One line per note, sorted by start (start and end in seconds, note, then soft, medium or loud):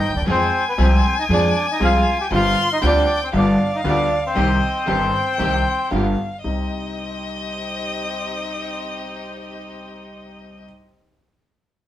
0.00 0.12 D#4 medium
0.00 0.13 D#5 loud
0.00 0.28 G5 loud
0.09 0.15 D2 medium
0.14 0.21 D#2 medium
0.14 0.22 D4 medium
0.14 0.22 D5 medium
0.21 0.27 E2 medium
0.21 0.28 E2 medium
0.27 0.49 F2 loud
0.27 0.49 F2 medium
0.27 0.49 F3 medium
0.27 0.49 G#3 medium
0.27 0.48 C4 medium
0.27 0.49 C4 medium
0.27 0.64 C4 medium
0.27 0.49 F4 medium
0.27 0.49 G#4 medium
0.27 2.32 G#5 loud
0.31 0.65 C5 loud
0.68 0.73 B3 medium
0.68 0.74 B4 medium
0.78 1.00 C2 loud
0.78 1.00 C2 medium
0.78 1.00 C3 loud
0.78 0.99 F3 medium
0.78 1.00 G#3 medium
0.78 1.00 C4 medium
0.78 1.00 F4 medium
0.78 1.00 G#4 medium
0.82 1.16 C4 medium
0.82 1.16 C5 loud
1.19 1.24 D#4 medium
1.19 1.25 D#5 medium
1.29 1.51 F2 loud
1.29 1.51 F2 medium
1.29 1.51 F3 medium
1.29 1.51 G#3 medium
1.29 1.51 C4 medium
1.29 1.66 D4 medium
1.29 1.51 F4 medium
1.29 1.51 G#4 medium
1.33 1.67 D5 loud
1.72 1.82 D#4 medium
1.72 1.83 D#5 medium
1.80 2.02 C2 medium
1.80 2.02 C3 medium
1.80 2.02 F3 medium
1.80 2.02 G#3 medium
1.80 2.02 C4 medium
1.80 2.02 F4 medium
1.80 2.02 G#4 medium
1.80 2.02 G#4 loud
1.84 2.18 F4 medium
1.84 2.18 F5 loud
2.21 2.26 G4 medium
2.21 2.28 G5 medium
2.31 2.53 G1 medium
2.31 2.53 G2 loud
2.31 2.53 D3 medium
2.31 2.53 G3 medium
2.31 2.53 C4 medium
2.31 2.53 F4 medium
2.31 2.53 G4 loud
2.31 2.84 C6 loud
2.35 2.69 F4 medium
2.35 2.70 F5 loud
2.73 2.78 D#4 medium
2.73 2.79 D#5 medium
2.82 3.04 D2 loud
2.82 3.04 D3 loud
2.82 3.04 G3 medium
2.82 3.04 C4 medium
2.82 3.04 F4 medium
2.82 3.04 G4 loud
2.82 3.33 G5 loud
2.86 3.20 D4 medium
2.86 3.21 D5 loud
3.24 3.29 C4 medium
3.24 3.30 C5 medium
3.33 3.55 G1 medium
3.33 3.55 G2 loud
3.33 3.55 D3 medium
3.33 3.55 G3 medium
3.33 3.55 B3 medium
3.33 3.71 D4 medium
3.33 3.55 F4 medium
3.33 3.56 F4 medium
3.33 3.56 G4 medium
3.33 4.37 F5 loud
3.38 3.76 D5 medium
3.75 3.80 D#4 medium
3.75 3.81 D#5 medium
3.84 4.06 D2 loud
3.84 4.07 D2 loud
3.84 4.06 D3 medium
3.84 4.06 G3 medium
3.84 4.06 B3 medium
3.84 4.07 B3 medium
3.84 4.07 F4 medium
3.84 4.07 G4 medium
3.88 4.23 D4 medium
3.88 4.23 D5 medium
4.26 5.89 C4 medium
4.26 5.89 C5 medium
4.35 4.57 C2 loud
4.35 4.58 C2 loud
4.35 4.57 C3 medium
4.35 4.58 D#3 medium
4.35 4.58 G3 medium
4.35 4.57 C4 medium
4.35 4.58 C4 medium
4.35 4.58 D#4 medium
4.35 4.58 G4 medium
4.35 4.58 G4 loud
4.35 4.89 D#5 medium
4.87 5.09 G1 loud
4.87 5.10 G1 medium
4.87 5.09 G2 medium
4.87 5.09 D#3 medium
4.87 5.09 G3 medium
4.87 5.09 C4 medium
4.87 5.09 D#4 medium
4.87 5.09 G4 medium
4.87 5.92 G5 medium
5.38 5.61 C2 medium
5.38 5.61 C2 loud
5.38 5.61 C3 medium
5.38 5.61 D#3 medium
5.38 5.61 G3 medium
5.38 5.61 C4 medium
5.38 5.61 D#4 medium
5.38 5.61 G4 medium
5.38 5.62 G4 medium
5.91 6.13 G1 medium
5.91 6.14 G1 medium
5.91 6.13 G2 medium
5.91 6.13 D3 medium
5.91 6.13 G3 medium
5.91 6.13 B3 medium
5.91 6.14 B3 medium
5.91 6.13 F4 medium
5.91 6.14 F4 medium
5.91 6.14 G4 medium
5.91 6.41 F5 medium
6.41 10.65 C2 medium
6.41 6.66 C2 medium
6.41 10.65 G3 medium
6.41 10.64 C4 medium
6.41 10.65 C4 medium
6.41 10.64 D#4 medium
6.41 10.65 D#4 medium
6.41 10.64 G4 medium
6.41 10.62 D#5 medium